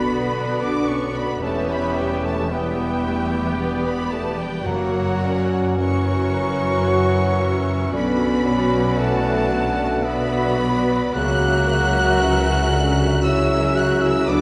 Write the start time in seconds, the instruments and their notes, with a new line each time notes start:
Already playing: double bass section B1, cello section B2, bassoon D3, french horn section B3, viola section B3 F#4, clarinet D4, violin section B4 D5 B5, cor anglais D5, flute B5
0.35 cor anglais D5
0.60 french horn section D4, flute D6, violin section D6
0.87 french horn section C#4, violin section C#6, flute C#6
1.14 french horn section B3, flute B5, violin section B5
1.40 double bass section E1, cello section E2, bassoon E3, french horn section A3, viola section B3 G4, clarinet C#4, violin section B4 E5 A5, cor anglais C#5, flute A5
1.66 french horn section B3, flute B5
1.71 violin section B5
1.96 french horn section G3, flute G5, violin section G5
2.22 french horn section A3, flute A5
2.26 violin section A5
2.48 french horn section G3, clarinet B3, viola section B3 G4, violin section B4 E5, cor anglais B4, flute G5
2.54 violin section G5
3.05 clarinet A3
3.58 clarinet B3, violin section D5
3.83 french horn section B3, flute B5
3.88 violin section B5
4.09 french horn section A3, flute A5, violin section A5
4.38 french horn section G3, flute G5, violin section G5
4.64 double bass section F#1, timpani F#2, cello section F#2, french horn section F#3, bassoon F#3, viola section F#3 F#4, violin section A#4 C#5 F#5, cor anglais A#4, flute F#5
4.69 clarinet A#3
5.23 clarinet C#4, cor anglais D5
5.78 bassoon E3, viola section F#3 F#4, french horn section C#4, violin section A#4 C#5 C#6, cor anglais C#5, flute C#6
6.34 cor anglais A#4
6.86 cor anglais F#5
7.40 cor anglais E5
7.91 double bass section B1, cello section B2, bassoon D3, viola section F#3 F#4, french horn section B3, violin section B4 D5, cor anglais D5, flute B5
7.95 violin section B5
8.46 bassoon F#3
8.97 bassoon E3, french horn section A3, cor anglais F#5, flute A5, violin section A5
9.52 bassoon D3
10.02 viola section F#3 F#4, french horn section B3, clarinet B3, violin section B4 D5 B5, cor anglais E5, flute B5
10.59 clarinet B3, cor anglais D5
11.13 double bass section C#2, cello section C#3, bassoon C#3, viola section F#3 F#4, clarinet A#3, french horn section F#4, violin section A#4 E5 F#6, cor anglais A#4, flute F#6
11.68 bassoon F#3
12.18 bassoon E3, clarinet C#4
12.71 bassoon D3
13.21 bassoon C#3, viola section F#3 F#4, clarinet C#4, french horn section E4, violin section A#4 E5 E6, cor anglais C#5, flute E6
13.74 french horn section F#4, flute F#6, violin section F#6
14.00 french horn section E4, flute E6, violin section E6
14.27 double bass section D2, cello section D3, viola section F#3 F#4, bassoon F#3, clarinet B3, french horn section D4, violin section B4 D5 D6, cor anglais B4, flute D6